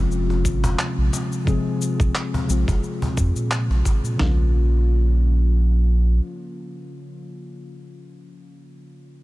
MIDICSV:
0, 0, Header, 1, 5, 480
1, 0, Start_track
1, 0, Key_signature, -5, "minor"
1, 0, Tempo, 681818
1, 1034, Time_signature, 4, 2, 24, 8
1, 6501, End_track
2, 0, Start_track
2, 0, Title_t, "Synth keys"
2, 0, Program_c, 0, 88
2, 0, Control_c, 0, 64, 127
2, 0, Note_on_c, 0, 48, 87
2, 0, Note_on_c, 0, 53, 78
2, 0, Note_on_c, 0, 56, 76
2, 0, Note_on_c, 0, 60, 75
2, 0, Note_on_c, 0, 65, 89
2, 1001, Note_off_c, 0, 48, 0
2, 1005, Note_off_c, 0, 53, 0
2, 1008, Note_off_c, 0, 56, 0
2, 1012, Note_off_c, 0, 60, 0
2, 1016, Note_off_c, 0, 65, 0
2, 1019, Note_on_c, 0, 48, 83
2, 1027, Note_on_c, 0, 53, 71
2, 1034, Note_on_c, 0, 56, 78
2, 1041, Note_on_c, 0, 60, 77
2, 1049, Note_on_c, 0, 68, 89
2, 1721, Note_off_c, 0, 48, 0
2, 1725, Note_off_c, 0, 53, 0
2, 1728, Note_off_c, 0, 56, 0
2, 1732, Note_off_c, 0, 60, 0
2, 1736, Note_off_c, 0, 68, 0
2, 1742, Note_on_c, 0, 48, 69
2, 1749, Note_on_c, 0, 53, 61
2, 1758, Note_on_c, 0, 56, 63
2, 1763, Note_on_c, 0, 60, 68
2, 1770, Note_on_c, 0, 65, 74
2, 2922, Note_off_c, 0, 48, 0
2, 2926, Note_off_c, 0, 53, 0
2, 2930, Note_off_c, 0, 56, 0
2, 2933, Note_off_c, 0, 60, 0
2, 2934, Note_on_c, 0, 49, 69
2, 2936, Note_off_c, 0, 65, 0
2, 2945, Note_on_c, 0, 53, 64
2, 2955, Note_on_c, 0, 58, 67
2, 2965, Control_c, 0, 64, 0
2, 2966, Note_on_c, 0, 61, 64
2, 2977, Note_on_c, 0, 65, 78
2, 3079, Control_c, 0, 64, 127
2, 5299, Note_off_c, 0, 49, 0
2, 5310, Note_off_c, 0, 53, 0
2, 5320, Note_off_c, 0, 58, 0
2, 5331, Note_off_c, 0, 61, 0
2, 5342, Note_off_c, 0, 65, 0
2, 6501, End_track
3, 0, Start_track
3, 0, Title_t, "Sub bass"
3, 0, Program_c, 1, 38
3, 0, Note_on_c, 1, 29, 81
3, 316, Note_on_c, 1, 32, 82
3, 327, Note_off_c, 1, 29, 0
3, 444, Note_on_c, 1, 29, 98
3, 455, Note_off_c, 1, 32, 0
3, 533, Note_off_c, 1, 29, 0
3, 687, Note_on_c, 1, 34, 79
3, 775, Note_off_c, 1, 34, 0
3, 1408, Note_on_c, 1, 34, 96
3, 1495, Note_off_c, 1, 34, 0
3, 1755, Note_on_c, 1, 34, 96
3, 1862, Note_off_c, 1, 34, 0
3, 1887, Note_on_c, 1, 29, 78
3, 1974, Note_off_c, 1, 29, 0
3, 2234, Note_on_c, 1, 41, 88
3, 2341, Note_off_c, 1, 41, 0
3, 2363, Note_on_c, 1, 46, 82
3, 2599, Note_off_c, 1, 46, 0
3, 2603, Note_on_c, 1, 34, 81
3, 2693, Note_off_c, 1, 34, 0
3, 2713, Note_on_c, 1, 32, 74
3, 2821, Note_off_c, 1, 32, 0
3, 2842, Note_on_c, 1, 46, 86
3, 2932, Note_off_c, 1, 46, 0
3, 2954, Note_on_c, 1, 34, 92
3, 4366, Note_off_c, 1, 34, 0
3, 6501, End_track
4, 0, Start_track
4, 0, Title_t, "Cajon"
4, 211, Note_on_c, 9, 38, 53
4, 282, Note_off_c, 9, 38, 0
4, 449, Note_on_c, 9, 36, 100
4, 519, Note_off_c, 9, 36, 0
4, 796, Note_on_c, 9, 38, 70
4, 866, Note_off_c, 9, 38, 0
4, 1649, Note_on_c, 9, 36, 84
4, 1719, Note_off_c, 9, 36, 0
4, 1893, Note_on_c, 9, 38, 71
4, 1963, Note_off_c, 9, 38, 0
4, 2128, Note_on_c, 9, 36, 79
4, 2198, Note_off_c, 9, 36, 0
4, 2236, Note_on_c, 9, 38, 33
4, 2306, Note_off_c, 9, 38, 0
4, 2610, Note_on_c, 9, 38, 52
4, 2681, Note_off_c, 9, 38, 0
4, 2712, Note_on_c, 9, 38, 62
4, 2783, Note_off_c, 9, 38, 0
4, 6501, End_track
5, 0, Start_track
5, 0, Title_t, "Drums"
5, 81, Note_on_c, 9, 82, 31
5, 151, Note_off_c, 9, 82, 0
5, 316, Note_on_c, 9, 36, 55
5, 319, Note_on_c, 9, 82, 71
5, 387, Note_off_c, 9, 36, 0
5, 390, Note_off_c, 9, 82, 0
5, 452, Note_on_c, 9, 82, 43
5, 522, Note_off_c, 9, 82, 0
5, 556, Note_on_c, 9, 39, 89
5, 560, Note_on_c, 9, 82, 29
5, 626, Note_off_c, 9, 39, 0
5, 631, Note_off_c, 9, 82, 0
5, 799, Note_on_c, 9, 82, 69
5, 870, Note_off_c, 9, 82, 0
5, 932, Note_on_c, 9, 82, 42
5, 1002, Note_off_c, 9, 82, 0
5, 1035, Note_on_c, 9, 36, 100
5, 1040, Note_on_c, 9, 82, 30
5, 1106, Note_off_c, 9, 36, 0
5, 1110, Note_off_c, 9, 82, 0
5, 1279, Note_on_c, 9, 82, 67
5, 1349, Note_off_c, 9, 82, 0
5, 1407, Note_on_c, 9, 36, 102
5, 1411, Note_on_c, 9, 82, 41
5, 1477, Note_off_c, 9, 36, 0
5, 1481, Note_off_c, 9, 82, 0
5, 1514, Note_on_c, 9, 39, 82
5, 1518, Note_on_c, 9, 82, 30
5, 1585, Note_off_c, 9, 39, 0
5, 1589, Note_off_c, 9, 82, 0
5, 1758, Note_on_c, 9, 82, 73
5, 1828, Note_off_c, 9, 82, 0
5, 1886, Note_on_c, 9, 36, 100
5, 1889, Note_on_c, 9, 82, 41
5, 1957, Note_off_c, 9, 36, 0
5, 1960, Note_off_c, 9, 82, 0
5, 1996, Note_on_c, 9, 82, 31
5, 2066, Note_off_c, 9, 82, 0
5, 2234, Note_on_c, 9, 36, 92
5, 2236, Note_on_c, 9, 82, 77
5, 2305, Note_off_c, 9, 36, 0
5, 2306, Note_off_c, 9, 82, 0
5, 2367, Note_on_c, 9, 82, 41
5, 2437, Note_off_c, 9, 82, 0
5, 2473, Note_on_c, 9, 39, 88
5, 2477, Note_on_c, 9, 82, 29
5, 2543, Note_off_c, 9, 39, 0
5, 2547, Note_off_c, 9, 82, 0
5, 2714, Note_on_c, 9, 36, 62
5, 2717, Note_on_c, 9, 82, 69
5, 2784, Note_off_c, 9, 36, 0
5, 2787, Note_off_c, 9, 82, 0
5, 2849, Note_on_c, 9, 82, 38
5, 2920, Note_off_c, 9, 82, 0
5, 2953, Note_on_c, 9, 38, 89
5, 2953, Note_on_c, 9, 43, 85
5, 3023, Note_off_c, 9, 38, 0
5, 3023, Note_off_c, 9, 43, 0
5, 6501, End_track
0, 0, End_of_file